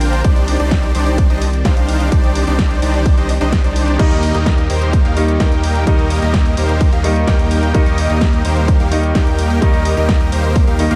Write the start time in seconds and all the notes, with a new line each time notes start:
Already playing: A#1 D3 A#3 C4 D4 F4 A#4 C5 G5
0.01 open hi-hat
0.13 closed hi-hat
0.24 C2 D#3 D4 D#4 G4 C5 D5, kick, closed hi-hat, ride
0.36 closed hi-hat
0.48 open hi-hat
0.60 C2 D4 D#4 G4 C5 D5, closed hi-hat
0.71 kick, snare, closed hi-hat, ride
0.83 closed hi-hat
0.95 C2 D4 D#4 G4 C5 D5, open hi-hat
1.07 closed hi-hat
1.18 kick, closed hi-hat, ride
1.30 C2 D4 D#4 G4 C5 D#5, closed hi-hat
1.42 open hi-hat
1.53 closed hi-hat
1.65 C2 D4 D#4 G4 C5 F5, kick, snare, closed hi-hat, ride
1.77 closed hi-hat
1.89 open hi-hat
2.00 closed hi-hat
2.12 C2 D4 D#4 G4 C5 D5, kick, closed hi-hat, ride
2.24 closed hi-hat
2.35 open hi-hat
2.47 C2 D4 D#4 G4 C5 D5, closed hi-hat
2.59 kick, snare, closed hi-hat, ride
2.71 closed hi-hat
2.82 C2 D4 D#4 G4 C5 D5, open hi-hat
2.94 closed hi-hat
3.06 kick, open hi-hat, ride
3.17 C2 D4 D#4 G4 C5 D#5, closed hi-hat
3.29 open hi-hat
3.41 C2 D4 D#4 G4 C5 D#5, closed hi-hat
3.52 kick, snare, closed hi-hat, ride
3.64 C2 D4 D#4 G4 C5 D5, closed hi-hat
3.76 open hi-hat
3.88 closed hi-hat
3.98 D#2 D#3 G3 A#3 D#4 G4 A#4 D#5, kick, closed hi-hat, crash, ride
4.11 closed hi-hat
4.23 open hi-hat
4.35 D#2 A#3 D#4 G4 A#4 D#5, closed hi-hat
4.46 kick, snare, closed hi-hat, ride
4.58 closed hi-hat
4.70 D#2 A#3 D#4 G4 A#4 C5, open hi-hat
4.82 closed hi-hat
4.93 kick, closed hi-hat, ride
5.05 D#2 A#3 D#4 G4 A#4 F5, closed hi-hat
5.16 D#3 G3 A#3 D#4, open hi-hat
5.28 closed hi-hat
5.40 D#2 A#3 D#4 G4 A#4 G5, kick, snare, closed hi-hat, ride
5.52 closed hi-hat
5.64 open hi-hat
5.75 closed hi-hat
5.86 D#2 D#3 G3 A#3 D#4 G4 A#4 D#5, kick, closed hi-hat, ride
5.99 closed hi-hat
6.10 open hi-hat
6.22 D#2 A#3 D#4 G4 A#4 D#5, closed hi-hat
6.34 kick, snare, closed hi-hat, ride
6.46 closed hi-hat
6.57 D#2 A#3 D#4 G4 A#4 C5, open hi-hat
6.69 closed hi-hat
6.81 kick, open hi-hat, ride
6.92 D#2 A#3 D#4 G4 A#4 F5, closed hi-hat
7.04 D#3 G3 A#3 D#4, open hi-hat
7.16 closed hi-hat
7.27 D#2 A#3 D#4 G4 A#4 G5, kick, snare, closed hi-hat, ride
7.39 closed hi-hat
7.51 open hi-hat
7.63 closed hi-hat
7.73 D#2 D#3 G3 A#3 D#4 G4 A#4 D#5, kick, closed hi-hat, ride
7.86 closed hi-hat
7.98 open hi-hat
8.10 D#2 A#3 D#4 G4 A#4 D#5, closed hi-hat
8.21 kick, snare, closed hi-hat, ride
8.33 closed hi-hat
8.45 D#2 A#3 D#4 G4 A#4 C5, open hi-hat
8.57 closed hi-hat
8.68 kick, closed hi-hat, ride
8.80 D#2 A#3 D#4 G4 A#4 F5, closed hi-hat
8.91 D#3 G3 A#3 D#4, open hi-hat
9.03 closed hi-hat
9.15 D#2 A#3 D#4 G4 A#4 G5, kick, snare, closed hi-hat, ride
9.27 closed hi-hat
9.39 open hi-hat
9.50 closed hi-hat
9.61 D#2 D#3 G3 A#3 D#4 G4 A#4 D#5, kick, closed hi-hat, ride
9.74 closed hi-hat
9.85 open hi-hat
9.97 D#2 A#3 D#4 G4 A#4 D#5, closed hi-hat
10.09 kick, snare, closed hi-hat, ride
10.21 closed hi-hat
10.32 D#2 A#3 D#4 G4 A#4 C5, open hi-hat
10.44 closed hi-hat
10.56 kick, open hi-hat, ride
10.67 D#2 A#3 D#4 G4 A#4 F5, closed hi-hat
10.79 D#3 G3 A#3 D#4, open hi-hat
10.91 D#2 A#3 D#4 G4 A#4 F5, closed hi-hat